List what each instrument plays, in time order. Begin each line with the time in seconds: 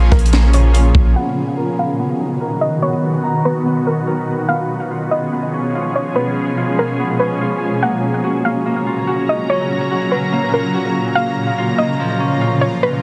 Already playing: ambient pad A#2 C#3 F3 C#4 G#4, harp F3 A#3 C#4 F4
0.11 808-style bass A#1, harp A#3, synth pluck A#4, kick, cross-stick, closed hi-hat
0.19 closed hi-hat
0.26 closed hi-hat
0.33 harp A#3, snare, closed hi-hat
0.53 harp C#4, synth pluck C#5, closed hi-hat
0.73 harp F4, closed hi-hat
0.95 808-style bass A#1, kick
1.16 ambient pad B2 D#3 F#3 B3 F#4, harp B3, synth pluck F#5
1.57 harp A#4
1.78 harp B3, synth pluck F5
1.99 harp B3
2.20 harp D#4
2.41 harp A#4
2.61 synth pluck D#5
2.82 harp B3, synth pluck C#5
3.24 harp A#5
3.45 harp B3, synth pluck B4
3.65 harp B3
3.87 harp D#4, synth pluck A#4
4.07 harp A#4
4.49 ambient pad B2 F3 G#3 C#4 G#4, harp B3, synth pluck F5
4.91 harp F4
5.11 harp B3, synth pluck D#5
5.32 harp B3
5.53 harp C#4
5.75 harp F4
5.95 synth pluck C#5
6.16 harp B3, synth pluck B4
6.57 harp F4
6.78 harp B3, synth pluck A#4
7.00 harp B3
7.19 harp C#4, synth pluck B4
7.41 harp F4
7.82 ambient pad A#2 C#3 F#3 C#4 A#5, harp A#3, synth pluck F#5
8.24 harp F#4
8.45 harp A#3, synth pluck F5
8.66 harp A#3
8.87 harp F4
9.07 harp F#4
9.29 synth pluck D#5
9.49 harp C#4, synth pluck C#5
9.91 harp F#4
10.11 harp F#3, synth pluck B4
10.32 harp A#3
10.53 harp F4, synth pluck A#4
10.74 harp F#4
11.15 ambient pad F3 F4, harp A#3, synth pluck F5
11.58 harp F4
11.78 harp A#3, synth pluck D#5
11.99 harp F3
12.20 harp C#4
12.41 harp F4
12.61 synth pluck C#5
12.83 synth pluck B4